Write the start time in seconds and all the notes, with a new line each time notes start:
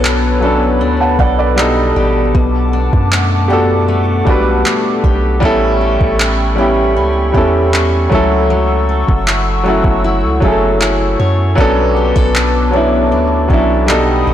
Already playing: B1 F#3 B3 C#4 D4 A4 B4 C#5 B5
0.04 D4, clap
0.40 F#3 B3 C#4 D4 A4
0.45 A4
0.81 D2 D4
1.00 F#5 A5
1.19 B1 A4 D5 F#5, kick
1.39 B4 D5
1.56 B2 G3 B3 D4 D#4 A4 D5 A5, clap
1.61 A4
1.96 A1 G4
2.35 B1 B2 F#5 D6, kick
2.73 D4
2.93 F#2, kick
3.12 A3, clap
3.48 B3 D4 F#4 G4
3.53 A4
3.88 A3
4.25 B1 G3 B3 D4 F#4, kick
4.30 B4
4.65 A3, clap
5.04 B1 G4, kick
5.40 A1 G3 A3 B3 C#4 E4 G5 B5 C#6, kick
5.45 A4
5.81 G4
6.01 A1, kick
6.20 C#4, clap
6.55 G3 B3 C#4 E4 G4
6.60 G4
6.96 C#2 C#4
7.32 E2 G3 B3 C#4 E4 G4, kick
7.37 A4
7.73 C#4, clap
8.10 C#2 F#3 A3 C#4 E4 F#5 E6, kick
8.15 A4
8.50 F#3
8.89 A4
9.08 F#1, kick
9.27 E4, clap
9.64 F#3 A3 C#4 E4 A4
9.68 F#4
9.84 F#1, kick
10.04 E4
10.24 C#2
10.40 F#1 F#3 A3 C#4 E4 A4, kick
10.45 G#4
10.52 A4
10.81 E4, clap
11.19 F#2 C#5
11.55 B1 F#3 B3 C#4 D4 B4 A5 D6, kick
11.60 A4
11.96 G4
12.16 B1 A4, kick
12.35 D4, clap
12.71 F#3 B3 C#4 D4 A4
12.76 E4
13.12 D2 D4
13.48 B1 F#3 B3 C#4 D4 A4, kick
13.53 E4
13.86 B2 G3 B3 D4 D#4 A4 G5 B5 D#6, clap
13.91 A4
14.27 A1 G4